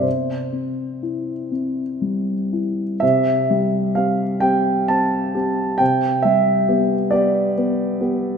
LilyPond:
\new Staff \with { instrumentName = "Grand piano" } { \time 6/8 \key c \major \tempo 4. = 43 << { c''4. r4. | e''4 f''8 g''8 a''4 | g''8 e''4 d''4. | } \\ { c8 c'8 e'8 c'8 g8 e'8 | c8 g8 <c' g'>8 <c' g'>8 c'8 <c' g'>8 | c8 g8 <b g'>8 <b g'>8 b8 <b g'>8 | } >> }